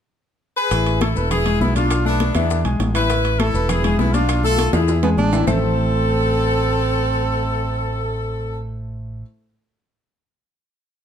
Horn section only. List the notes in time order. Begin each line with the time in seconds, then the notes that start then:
0.57 G#4 B4
1.02 E4 A4
1.32 E4 G#4
1.61 B3 E4
1.77 D4 F4
2.06 B3 D4
2.37 B3 D4
2.95 E4 B4
3.39 E4 A4
3.69 E4 G#4
3.99 B3 E4
4.14 D4 F4
4.44 F4 A4
4.75 E4 G#4
5.48 A4